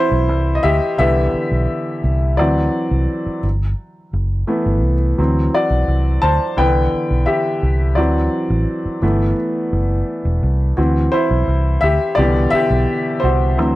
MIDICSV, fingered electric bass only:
0, 0, Header, 1, 3, 480
1, 0, Start_track
1, 0, Tempo, 699301
1, 1640, Time_signature, 4, 2, 24, 8
1, 9441, End_track
2, 0, Start_track
2, 0, Title_t, "Fingered electric bass"
2, 0, Program_c, 0, 33
2, 79, Note_on_c, 0, 35, 79
2, 196, Note_off_c, 0, 35, 0
2, 196, Note_on_c, 0, 36, 84
2, 397, Note_off_c, 0, 36, 0
2, 440, Note_on_c, 0, 38, 83
2, 539, Note_off_c, 0, 38, 0
2, 681, Note_on_c, 0, 36, 95
2, 879, Note_off_c, 0, 36, 0
2, 1040, Note_on_c, 0, 35, 72
2, 1139, Note_off_c, 0, 35, 0
2, 1399, Note_on_c, 0, 36, 84
2, 1639, Note_off_c, 0, 36, 0
2, 1639, Note_on_c, 0, 38, 97
2, 1838, Note_off_c, 0, 38, 0
2, 1999, Note_on_c, 0, 36, 83
2, 2099, Note_off_c, 0, 36, 0
2, 2356, Note_on_c, 0, 31, 80
2, 2556, Note_off_c, 0, 31, 0
2, 2837, Note_on_c, 0, 30, 81
2, 3037, Note_off_c, 0, 30, 0
2, 3198, Note_on_c, 0, 31, 85
2, 3315, Note_off_c, 0, 31, 0
2, 3315, Note_on_c, 0, 36, 79
2, 3516, Note_off_c, 0, 36, 0
2, 3560, Note_on_c, 0, 38, 97
2, 3758, Note_off_c, 0, 38, 0
2, 3915, Note_on_c, 0, 35, 83
2, 4016, Note_off_c, 0, 35, 0
2, 4035, Note_on_c, 0, 36, 85
2, 4235, Note_off_c, 0, 36, 0
2, 4275, Note_on_c, 0, 38, 77
2, 4376, Note_off_c, 0, 38, 0
2, 4515, Note_on_c, 0, 36, 96
2, 4715, Note_off_c, 0, 36, 0
2, 4878, Note_on_c, 0, 35, 77
2, 4977, Note_off_c, 0, 35, 0
2, 5237, Note_on_c, 0, 36, 86
2, 5479, Note_off_c, 0, 36, 0
2, 5479, Note_on_c, 0, 38, 100
2, 5677, Note_off_c, 0, 38, 0
2, 5836, Note_on_c, 0, 33, 86
2, 5936, Note_off_c, 0, 33, 0
2, 6195, Note_on_c, 0, 31, 92
2, 6395, Note_off_c, 0, 31, 0
2, 6676, Note_on_c, 0, 30, 82
2, 6875, Note_off_c, 0, 30, 0
2, 7035, Note_on_c, 0, 28, 81
2, 7135, Note_off_c, 0, 28, 0
2, 7158, Note_on_c, 0, 36, 86
2, 7356, Note_off_c, 0, 36, 0
2, 7400, Note_on_c, 0, 38, 104
2, 7598, Note_off_c, 0, 38, 0
2, 7762, Note_on_c, 0, 35, 89
2, 7859, Note_off_c, 0, 35, 0
2, 7877, Note_on_c, 0, 36, 81
2, 8076, Note_off_c, 0, 36, 0
2, 8118, Note_on_c, 0, 38, 79
2, 8216, Note_off_c, 0, 38, 0
2, 8359, Note_on_c, 0, 36, 93
2, 8557, Note_off_c, 0, 36, 0
2, 8720, Note_on_c, 0, 35, 83
2, 8818, Note_off_c, 0, 35, 0
2, 9086, Note_on_c, 0, 36, 80
2, 9325, Note_off_c, 0, 36, 0
2, 9325, Note_on_c, 0, 38, 97
2, 9441, Note_off_c, 0, 38, 0
2, 9441, End_track
3, 0, Start_track
3, 0, Title_t, "Muted fingered electric bass strokes"
3, 917, Note_on_c, 9, 29, 44
3, 986, Note_off_c, 9, 29, 0
3, 2240, Note_on_c, 9, 29, 44
3, 2308, Note_off_c, 9, 29, 0
3, 4758, Note_on_c, 9, 29, 43
3, 4827, Note_off_c, 9, 29, 0
3, 6078, Note_on_c, 9, 29, 46
3, 6147, Note_off_c, 9, 29, 0
3, 8598, Note_on_c, 9, 29, 45
3, 8667, Note_off_c, 9, 29, 0
3, 9441, End_track
0, 0, End_of_file